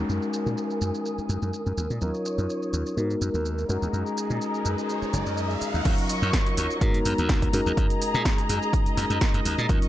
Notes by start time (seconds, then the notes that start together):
Already playing: G#3 C#4 D#4 F#4 A#4 G#5 D#6, downlifter
0.09 F#2, shaker
0.22 shaker
0.33 shaker
0.46 A#2, shaker
0.58 shaker
0.70 shaker
0.81 F#2, shaker
0.95 shaker
1.06 shaker
1.18 muted slap bass stroke, shaker
1.29 F#2, shaker
1.42 F#2, shaker
1.53 shaker
1.66 F#2, shaker
1.77 D#2, shaker
1.90 A#2, shaker
2.01 D#2 F#3 C#4 D#4 F4 A#4 C#5 D#6, riser, shaker
2.14 shaker
2.26 shaker
2.38 F#2, shaker
2.50 shaker
2.63 shaker
2.73 D#2, shaker
2.86 shaker
2.96 G#2 G#3 B3 D#4 F#4 A#4, shaker
3.10 shaker
3.21 F#2, shaker
3.34 D#2, shaker
3.46 shaker
3.58 shaker
3.68 F#2 G#3 C#4 D#4 F#4 G#4 A#4 D#5 A#5, shaker
3.82 D#2, shaker
3.93 F#2, shaker
4.06 shaker
4.18 shaker
4.30 A#2, shaker
4.41 shaker
4.54 shaker
4.65 F#2, shaker
4.78 shaker
4.89 shaker
5.02 muted slap bass stroke, shaker
5.13 F#1, shaker
5.26 F#2, shaker
5.37 shaker
5.50 shaker
5.61 muted slap bass stroke, shaker
5.74 D#2, shaker
5.85 D#2 F#3 C#4 D#4 F4 A#4 D#5 C#6, kick, closed hi-hat, crash, shaker
5.98 closed hi-hat, shaker
6.09 open hi-hat, shaker
6.22 F#2, shaker
6.33 kick, snare, closed hi-hat, shaker
6.46 closed hi-hat, shaker
6.57 D#2, open hi-hat, shaker
6.71 shaker
6.81 G#2 G#3 B3 D#4 F#4 A#4 A#5, kick, closed hi-hat, shaker
6.94 closed hi-hat, shaker
7.05 F#2, open hi-hat, shaker
7.18 D#2, closed hi-hat, shaker
7.29 kick, snare, closed hi-hat, shaker
7.42 kick, closed hi-hat, shaker
7.53 F#2 G#3 C#4 D#4 F#4 G#4 A#4 D#5, open hi-hat, shaker
7.66 D#2, shaker
7.77 F#2, kick, closed hi-hat, shaker
7.90 closed hi-hat, shaker
8.02 open hi-hat, shaker
8.14 A#2, shaker
8.25 kick, snare, closed hi-hat, shaker
8.38 closed hi-hat, shaker
8.49 F#2, open hi-hat, shaker
8.63 shaker
8.73 kick, closed hi-hat, shaker
8.86 muted slap bass stroke, closed hi-hat, shaker
8.97 F#2, snare, open hi-hat, shaker
9.10 F#2, closed hi-hat, shaker
9.21 kick, snare, closed hi-hat, shaker
9.34 F#2, closed hi-hat, shaker
9.45 D#2, open hi-hat, shaker
9.58 A#2, shaker
9.69 D#2 F#3 C#4 D#4 F4 A#4 C#6, kick, closed hi-hat, shaker
9.82 closed hi-hat, shaker